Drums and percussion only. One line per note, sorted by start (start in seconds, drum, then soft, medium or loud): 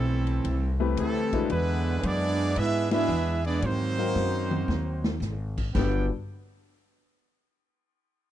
0.27 ride medium
0.44 kick soft
0.44 ride medium
0.97 kick soft
0.97 hi-hat pedal medium
0.97 ride medium
1.33 kick medium
1.33 ride medium
1.50 kick soft
1.50 ride medium
2.03 kick soft
2.03 hi-hat pedal medium
2.03 ride medium
2.56 kick soft
2.56 ride medium
2.91 snare loud
2.91 ride medium
3.08 hi-hat pedal medium
3.44 ride medium
3.62 kick soft
3.62 ride medium
4.16 snare medium
4.16 hi-hat pedal medium
4.51 mid tom medium
4.69 snare medium
5.04 snare loud
5.22 snare medium
5.22 hi-hat pedal medium
5.57 kick medium
5.57 crash medium
5.75 kick loud
5.75 snare medium
5.75 crash medium